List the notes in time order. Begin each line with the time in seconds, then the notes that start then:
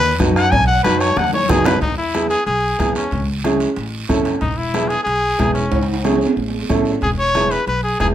Already playing: D#2 B4
0.20 F#2 D#4 F#4 B4, bombo low, bombo rim, high conga, short guiro
0.36 F#5, bombo rim, short guiro
0.51 B1 G#5, bombo low, bombo rim, cowbell, long guiro
0.67 F#5
0.83 F#2 D#4 F#4 B4, bombo rim, high conga, short guiro
1.00 C#5, bombo rim, short guiro
1.17 D#2 F#5, bombo rim, cowbell, high conga, long guiro
1.33 C#5, high conga, high timbale
1.49 F#2 D#4 F#4 G#4 B4, bombo low, bombo rim, low conga, short guiro
1.64 B4, bombo rim, low conga, low timbale, short guiro
1.81 E2 D#4, bombo low, high conga, high timbale, long guiro
1.98 E4
2.14 B3 E4 G#4, bombo rim, high conga, high timbale, short guiro
2.29 G#4, high timbale, short guiro
2.46 B1 G#4, high conga, high timbale, long guiro
2.79 E2 B3 E4 G#4, bombo low, bombo rim, high conga, high timbale, low timbale, short guiro
2.95 C#4, bombo rim, high timbale, short guiro
3.11 C#2, bombo low, high conga, high timbale, long guiro
3.44 C#4 E4 G#4, bombo rim, high conga, high timbale, short guiro
3.60 high timbale, short guiro
3.76 A1, high conga, high timbale, long guiro
4.09 F#1 C#4 E4 A4, bombo low, bombo rim, high conga, high timbale, low timbale, short guiro
4.25 bombo rim, high timbale, short guiro
4.41 E1 D#4, bombo low, high conga, high timbale, long guiro
4.57 E4
4.74 B3 E4 G#4, bombo rim, high conga, high timbale, short guiro
4.88 G#4, high timbale, short guiro
5.04 B1 G#4, high conga, high timbale, long guiro
5.38 E1 B3 E4 G#4, bombo low, bombo rim, high conga, high timbale, short guiro
5.54 C#4, high timbale, short guiro
5.72 C#2, bombo low, high conga, high timbale, long guiro
5.83 high timbale
5.94 high timbale
6.04 C#4 E4 G#4, bombo rim, high conga, low timbale, short guiro
6.15 high timbale
6.21 short guiro
6.27 low timbale
6.36 A1, high conga, long guiro
6.48 low timbale
6.59 low timbale
6.69 A1 C#4 E4 A4, bombo low, bombo rim, high conga, low timbale, short guiro
6.80 low timbale
6.85 short guiro
6.91 low timbale
7.01 E1 G#4, bombo low, high conga, high timbale, long guiro
7.19 C#5
7.34 B3 E4 G#4, bombo rim, high conga, high timbale, short guiro
7.51 B4, high timbale, short guiro
7.67 B1 B4, high conga, high timbale, long guiro
7.83 G#4
8.00 E1 B3 E4 G#4, bombo low, bombo rim, high conga, high timbale, short guiro